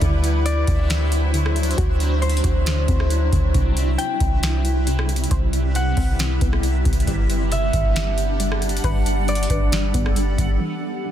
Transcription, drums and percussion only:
0.01 kick loud
0.01 closed hi-hat medium
0.24 closed hi-hat medium
0.46 closed hi-hat medium
0.67 kick medium
0.67 closed hi-hat medium
0.90 snare loud
0.90 closed hi-hat medium
1.12 closed hi-hat medium
1.34 closed hi-hat medium
1.46 cross-stick loud
1.56 closed hi-hat medium
1.63 closed hi-hat medium
1.71 closed hi-hat medium
1.78 kick loud
1.78 closed hi-hat medium
2.00 closed hi-hat medium
2.22 closed hi-hat soft
2.30 closed hi-hat medium
2.37 closed hi-hat medium
2.44 kick medium
2.44 closed hi-hat medium
2.66 snare loud
2.66 closed hi-hat medium
2.88 kick loud
2.88 closed hi-hat medium
3.00 cross-stick loud
3.10 closed hi-hat medium
3.32 kick medium
3.32 closed hi-hat medium
3.54 kick loud
3.54 closed hi-hat medium
3.77 closed hi-hat medium
3.99 closed hi-hat medium
4.20 kick medium
4.20 closed hi-hat medium
4.43 snare loud
4.43 closed hi-hat medium
4.65 closed hi-hat medium
4.87 closed hi-hat medium
4.99 cross-stick loud
5.09 closed hi-hat medium
5.16 closed hi-hat medium
5.24 closed hi-hat medium
5.31 kick loud
5.31 closed hi-hat medium
5.53 closed hi-hat medium
5.75 closed hi-hat medium
5.97 kick medium
5.97 open hi-hat soft
6.19 snare loud
6.19 closed hi-hat medium
6.41 kick loud
6.41 closed hi-hat medium
6.53 cross-stick loud
6.63 closed hi-hat medium
6.85 kick medium
6.85 closed hi-hat medium
6.93 closed hi-hat medium
7.00 closed hi-hat medium
7.07 kick loud
7.07 closed hi-hat medium
7.30 closed hi-hat medium
7.52 closed hi-hat medium
7.73 kick medium
7.73 closed hi-hat medium
7.96 snare loud
7.96 closed hi-hat medium
8.18 closed hi-hat medium
8.40 closed hi-hat medium
8.52 cross-stick loud
8.62 closed hi-hat medium
8.69 closed hi-hat medium
8.77 closed hi-hat medium
8.84 kick loud
8.84 closed hi-hat medium
9.06 closed hi-hat medium
9.28 closed hi-hat soft
9.35 closed hi-hat medium
9.43 closed hi-hat medium
9.50 kick medium
9.50 closed hi-hat medium
9.72 snare loud
9.72 closed hi-hat medium
9.94 kick loud
9.94 closed hi-hat medium
10.06 cross-stick loud
10.16 closed hi-hat medium
10.38 kick medium
10.38 closed hi-hat medium

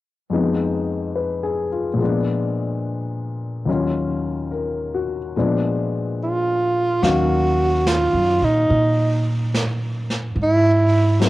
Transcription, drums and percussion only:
7.03 brush sweep soft
7.03 snare soft
7.87 snare soft
7.87 hi-hat pedal soft
8.71 brush sweep soft
9.55 snare soft
9.55 hi-hat pedal soft
10.10 snare soft
10.37 brush sweep soft
11.21 snare soft
11.21 hi-hat pedal soft

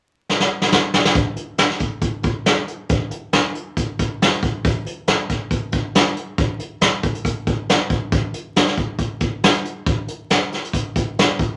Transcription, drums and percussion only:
0.29 snare medium
0.40 snare medium
0.61 snare medium
0.72 snare medium
0.94 snare medium
1.05 snare medium
1.15 kick loud
1.15 closed hi-hat medium
1.36 closed hi-hat medium
1.58 snare loud
1.58 closed hi-hat medium
1.70 snare soft
1.80 kick medium
1.80 closed hi-hat medium
2.01 kick medium
2.01 closed hi-hat medium
2.23 kick medium
2.23 closed hi-hat medium
2.46 snare loud
2.46 closed hi-hat medium
2.68 closed hi-hat medium
2.89 kick loud
2.89 closed hi-hat medium
3.11 closed hi-hat medium
3.33 snare medium
3.33 closed hi-hat medium
3.55 closed hi-hat medium
3.77 kick medium
3.77 closed hi-hat medium
3.99 kick medium
3.99 closed hi-hat medium
4.22 snare loud
4.22 closed hi-hat medium
4.33 closed hi-hat medium
4.43 kick medium
4.43 closed hi-hat medium
4.65 kick loud
4.65 closed hi-hat medium
4.86 closed hi-hat medium
5.07 snare loud
5.07 closed hi-hat medium
5.29 kick medium
5.29 snare soft
5.29 closed hi-hat medium
5.51 kick medium
5.51 closed hi-hat medium
5.72 kick medium
5.72 closed hi-hat medium
5.95 snare loud
5.95 closed hi-hat medium
6.06 closed hi-hat medium
6.17 closed hi-hat medium
6.38 kick loud
6.38 closed hi-hat medium
6.59 closed hi-hat medium
6.81 snare loud
6.81 closed hi-hat medium
7.03 kick medium
7.03 closed hi-hat medium
7.15 closed hi-hat medium
7.25 kick medium
7.25 closed hi-hat medium
7.47 kick medium
7.47 closed hi-hat medium
7.69 snare loud
7.69 closed hi-hat medium
7.90 kick medium
7.90 closed hi-hat medium
8.12 kick loud
8.12 closed hi-hat medium
8.34 closed hi-hat medium
8.56 snare loud
8.56 closed hi-hat medium
8.67 snare soft
8.78 kick medium
8.78 closed hi-hat medium
8.99 kick medium
8.99 closed hi-hat medium
9.20 kick medium
9.20 closed hi-hat medium
9.43 snare loud
9.43 closed hi-hat medium
9.54 closed hi-hat medium
9.65 closed hi-hat medium
9.86 kick loud
9.86 closed hi-hat medium
10.08 closed hi-hat medium
10.30 snare medium
10.30 closed hi-hat medium
10.52 snare soft
10.52 closed hi-hat medium
10.64 closed hi-hat medium
10.73 kick medium
10.73 closed hi-hat medium
10.96 kick medium
10.96 closed hi-hat medium
11.19 snare loud
11.19 closed hi-hat medium
11.39 kick medium
11.39 closed hi-hat medium

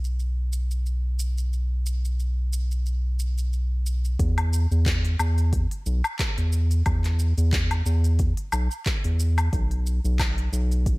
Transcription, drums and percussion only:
0.04 shaker soft
0.19 shaker soft
0.53 shaker medium
0.71 shaker soft
0.86 shaker soft
1.19 shaker medium
1.38 shaker soft
1.53 shaker soft
1.86 shaker medium
2.05 shaker soft
2.20 shaker soft
2.53 shaker medium
2.71 shaker soft
2.86 shaker soft
3.19 shaker medium
3.38 shaker soft
3.53 shaker soft
3.86 shaker medium
4.05 shaker soft
4.19 kick loud
4.19 open hi-hat medium
4.19 shaker soft
4.38 open hi-hat soft
4.38 low woodblock medium
4.53 shaker medium
4.72 shaker soft
4.86 kick loud
4.86 clap loud
4.86 open hi-hat medium
4.86 shaker soft
5.05 open hi-hat soft
5.19 low woodblock medium
5.19 shaker medium
5.38 open hi-hat soft
5.38 shaker soft
5.53 kick loud
5.53 open hi-hat medium
5.53 shaker soft
5.71 open hi-hat soft
5.86 shaker medium
6.04 low woodblock medium
6.04 shaker soft
6.19 kick loud
6.19 clap loud
6.19 open hi-hat medium
6.19 shaker soft
6.38 open hi-hat soft
6.53 shaker medium
6.71 open hi-hat soft
6.71 shaker soft
6.86 kick loud
6.86 open hi-hat medium
6.86 low woodblock medium
6.86 shaker soft
7.04 clap soft
7.04 open hi-hat soft
7.19 shaker medium
7.38 open hi-hat soft
7.38 shaker medium
7.53 kick loud
7.53 clap loud
7.53 open hi-hat medium
7.53 shaker soft
7.71 open hi-hat soft
7.71 low woodblock medium
7.86 shaker medium
8.04 open hi-hat soft
8.04 shaker soft
8.19 kick loud
8.19 open hi-hat medium
8.19 shaker soft
8.37 open hi-hat soft
8.52 low woodblock medium
8.52 shaker medium
8.71 shaker soft
8.86 kick loud
8.86 clap loud
8.86 open hi-hat medium
8.86 shaker soft
9.04 open hi-hat soft
9.20 shaker medium
9.38 open hi-hat soft
9.38 low woodblock medium
9.38 shaker soft
9.53 kick loud
9.53 open hi-hat medium
9.53 shaker soft
9.71 open hi-hat soft
9.87 shaker medium
10.05 shaker soft
10.19 kick loud
10.19 clap loud
10.19 open hi-hat medium
10.19 low woodblock medium
10.19 shaker soft
10.38 open hi-hat soft
10.53 shaker medium
10.71 open hi-hat soft
10.71 shaker soft
10.86 kick loud
10.86 open hi-hat medium
10.86 shaker soft

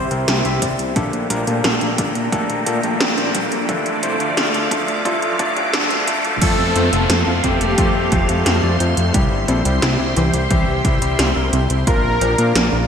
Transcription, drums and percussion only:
0.11 closed hi-hat soft
0.28 snare loud
0.28 closed hi-hat medium
0.45 closed hi-hat soft
0.62 kick medium
0.62 closed hi-hat loud
0.79 closed hi-hat soft
0.96 kick loud
0.96 closed hi-hat medium
1.13 closed hi-hat soft
1.30 closed hi-hat medium
1.47 closed hi-hat soft
1.64 snare loud
1.64 closed hi-hat medium
1.81 closed hi-hat soft
1.98 kick loud
1.98 closed hi-hat medium
2.15 closed hi-hat soft
2.32 kick loud
2.32 closed hi-hat medium
2.50 closed hi-hat soft
2.66 closed hi-hat medium
2.83 closed hi-hat soft
3.00 snare loud
3.00 closed hi-hat medium
3.18 closed hi-hat soft
3.35 kick medium
3.35 closed hi-hat loud
3.52 closed hi-hat soft
3.69 kick loud
3.69 closed hi-hat medium
3.86 closed hi-hat soft
4.03 closed hi-hat medium
4.20 closed hi-hat soft
4.37 snare loud
4.37 closed hi-hat medium
4.54 closed hi-hat soft
4.71 kick loud
4.71 closed hi-hat medium
4.88 closed hi-hat soft
5.05 kick loud
5.05 closed hi-hat medium
5.22 closed hi-hat soft
5.39 kick loud
5.39 closed hi-hat medium
5.57 closed hi-hat soft
5.73 snare loud
5.73 closed hi-hat medium
5.91 closed hi-hat soft
6.08 kick medium
6.08 closed hi-hat medium
6.25 closed hi-hat soft
6.42 kick loud
6.42 closed hi-hat loud
6.42 crash loud
6.76 closed hi-hat medium
6.93 closed hi-hat medium
7.10 snare loud
7.10 closed hi-hat loud
7.44 kick medium
7.44 closed hi-hat medium
7.61 closed hi-hat medium
7.78 kick loud
7.78 closed hi-hat loud
8.12 kick loud
8.12 closed hi-hat medium
8.29 closed hi-hat medium
8.46 snare loud
8.46 closed hi-hat loud
8.80 closed hi-hat medium
8.97 closed hi-hat medium
9.14 kick loud
9.14 closed hi-hat loud
9.48 closed hi-hat medium
9.65 closed hi-hat medium
9.82 snare loud
9.82 closed hi-hat loud
10.16 closed hi-hat medium
10.34 closed hi-hat medium
10.51 kick loud
10.51 closed hi-hat loud
10.85 kick loud
10.85 closed hi-hat medium
11.02 closed hi-hat medium
11.19 snare loud
11.19 closed hi-hat medium
11.53 closed hi-hat medium
11.70 closed hi-hat medium
11.87 kick loud
11.87 closed hi-hat medium
12.21 closed hi-hat medium
12.38 closed hi-hat medium
12.55 snare loud
12.55 closed hi-hat loud

